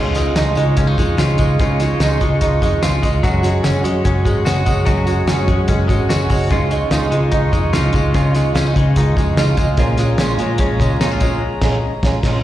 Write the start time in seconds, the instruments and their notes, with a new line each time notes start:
Already playing: picked electric bass C#2, twelve-string acoustic guitar C#3 F3 G#3 D#4 F4, clean electric guitar G#3 C#4, woodwind section F4 D#5 C#6
0.14 twelve-string acoustic guitar G#3 D#4 F4, snare, closed hi-hat, tambourine
0.35 picked electric bass C#2, twelve-string acoustic guitar C#3 F3 G#3 D#4 F4, snare, closed hi-hat, tambourine
0.55 picked electric bass C#3, twelve-string acoustic guitar G#3 D#4 F4, closed hi-hat, tambourine
0.76 picked electric bass C#2, twelve-string acoustic guitar F3 G#3 D#4 F4, clean electric guitar C#4, kick, closed hi-hat, tambourine
0.87 clean electric guitar D#4
0.98 picked electric bass F2, twelve-string acoustic guitar G#3 D#4 F4, kick, closed hi-hat, tambourine
1.17 picked electric bass C#2, twelve-string acoustic guitar C#3 F3 G#3 D#4 F4, snare, closed hi-hat, tambourine
1.38 picked electric bass C#2, twelve-string acoustic guitar G#3 D#4 F4, kick, closed hi-hat, tambourine
1.59 picked electric bass C#2, twelve-string acoustic guitar C#3 F3 G#3 D#4 F4, kick, closed hi-hat, tambourine
1.80 twelve-string acoustic guitar G#3 D#4 F4, snare, closed hi-hat, tambourine
2.00 picked electric bass C#2, twelve-string acoustic guitar C#3 F3 G#3 D#4 F4, snare, closed hi-hat, tambourine
2.20 picked electric bass C#3, twelve-string acoustic guitar G#3 D#4 F4, kick, closed hi-hat, tambourine
2.41 picked electric bass C#2, twelve-string acoustic guitar F3 G#3 D#4 F4, kick, closed hi-hat
2.62 picked electric bass F2, twelve-string acoustic guitar G#3 D#4 F4, kick, closed hi-hat, tambourine
2.83 picked electric bass C#2, twelve-string acoustic guitar C#3 F3 G#3 D#4 F4, snare, closed hi-hat, tambourine
3.03 picked electric bass C#2, twelve-string acoustic guitar G#3 D#4 F4, kick, closed hi-hat, tambourine
3.23 picked electric bass F#1, twelve-string acoustic guitar F#3 G#3 C#4 F#4, woodwind section G#4 F#5 C#6, kick, closed hi-hat, tambourine
3.43 twelve-string acoustic guitar G#3 C#4 F#4, snare, closed hi-hat, tambourine
3.64 picked electric bass F#1, twelve-string acoustic guitar F#3 G#3 C#4 F#4, snare, closed hi-hat, tambourine
3.84 picked electric bass F#2, twelve-string acoustic guitar G#3 C#4 F#4, closed hi-hat, tambourine
4.04 picked electric bass F#1, twelve-string acoustic guitar F#3 G#3 C#4 F#4, kick, closed hi-hat
4.25 picked electric bass G#1, twelve-string acoustic guitar G#3 C#4 F#4, kick, closed hi-hat, tambourine
4.45 picked electric bass F#1, twelve-string acoustic guitar F#3 G#3 C#4 F#4, snare, closed hi-hat, tambourine
4.66 picked electric bass F#1, twelve-string acoustic guitar G#3 C#4 F#4, kick, closed hi-hat, tambourine
4.86 picked electric bass F#1, twelve-string acoustic guitar F#3 G#3 C#4 F#4, kick, closed hi-hat, tambourine
5.07 twelve-string acoustic guitar G#3 C#4 F#4, closed hi-hat, tambourine
5.27 picked electric bass F#1, twelve-string acoustic guitar F#3 G#3 C#4 F#4, snare, closed hi-hat, tambourine
5.48 picked electric bass F#2, twelve-string acoustic guitar G#3 C#4 F#4, kick, closed hi-hat
5.68 picked electric bass F#1, twelve-string acoustic guitar F#3 G#3 C#4 F#4, kick, closed hi-hat, tambourine
5.89 picked electric bass G#1, twelve-string acoustic guitar G#3 C#4 F#4, kick, closed hi-hat, tambourine
6.09 picked electric bass F#1, twelve-string acoustic guitar F#3 G#3 C#4 F#4, snare, closed hi-hat, tambourine
6.29 picked electric bass F#1, twelve-string acoustic guitar G#3 C#4 F#4, kick, open hi-hat, tambourine
6.50 picked electric bass C#2, twelve-string acoustic guitar C#3 F3 G#3 D#4 F4, woodwind section F4 D#5, kick, closed hi-hat, tambourine
6.70 twelve-string acoustic guitar G#3 D#4 F4, closed hi-hat, tambourine
6.91 picked electric bass C#2, twelve-string acoustic guitar C#3 F3 G#3 D#4 F4, snare, closed hi-hat, tambourine
7.12 picked electric bass C#3, twelve-string acoustic guitar G#3 D#4 F4, closed hi-hat
7.32 picked electric bass C#2, twelve-string acoustic guitar F3 G#3 D#4 F4, kick, closed hi-hat
7.53 picked electric bass F2, twelve-string acoustic guitar G#3 D#4 F4, kick, closed hi-hat, tambourine
7.73 picked electric bass C#2, twelve-string acoustic guitar C#3 F3 G#3 D#4 F4, snare, closed hi-hat, tambourine
7.93 picked electric bass C#2, twelve-string acoustic guitar G#3 D#4 F4, kick, closed hi-hat, tambourine
8.14 picked electric bass C#2, twelve-string acoustic guitar C#3 F3 G#3 D#4 F4, kick, closed hi-hat, tambourine
8.33 twelve-string acoustic guitar G#3 D#4 F4, snare, closed hi-hat, tambourine
8.54 picked electric bass C#2, twelve-string acoustic guitar C#3 F3 G#3 D#4 F4, clean electric guitar C#4, snare, closed hi-hat, tambourine
8.67 clean electric guitar D#4
8.74 picked electric bass C#3, twelve-string acoustic guitar G#3 D#4 F4, kick, closed hi-hat
8.96 picked electric bass C#2, twelve-string acoustic guitar F3 G#3 D#4 F4, kick, closed hi-hat
9.17 picked electric bass F2, twelve-string acoustic guitar G#3 D#4 F4, kick, closed hi-hat, tambourine
9.37 picked electric bass C#2, twelve-string acoustic guitar C#3 F3 G#3 D#4 F4, snare, closed hi-hat, tambourine
9.57 picked electric bass C#2, twelve-string acoustic guitar G#3 D#4 F4, kick, closed hi-hat, tambourine
9.77 picked electric bass A#1, twelve-string acoustic guitar A#2 F3 G#3 C#4 F4, woodwind section G#4 C#5 A#5, kick, closed hi-hat, tambourine
9.97 twelve-string acoustic guitar G#3 C#4 F4, snare, closed hi-hat, tambourine
10.18 picked electric bass A#1, twelve-string acoustic guitar A#2 F3 G#3 C#4 F4, snare, closed hi-hat, tambourine
10.38 picked electric bass A#2, twelve-string acoustic guitar G#3 C#4 F4, closed hi-hat, tambourine
10.58 picked electric bass A#1, twelve-string acoustic guitar F3 G#3 C#4 F4, kick, closed hi-hat
10.80 picked electric bass C#2, twelve-string acoustic guitar G#3 C#4 F4, kick, closed hi-hat, tambourine
11.00 picked electric bass A#1, twelve-string acoustic guitar A#2 F3 G#3 C#4 F4, clean electric guitar D#4, snare, closed hi-hat, tambourine
11.11 clean electric guitar F4
11.20 picked electric bass A#1, twelve-string acoustic guitar G#3 C#4 F4, kick, closed hi-hat, tambourine
11.62 picked electric bass A#1, twelve-string acoustic guitar G#3 C#4 F4, kick, snare, crash
12.03 picked electric bass A#1, twelve-string acoustic guitar G#3 C#4 F4, kick, snare
12.23 picked electric bass A#1, twelve-string acoustic guitar F3 G#3 C#4 F4, kick, snare, crash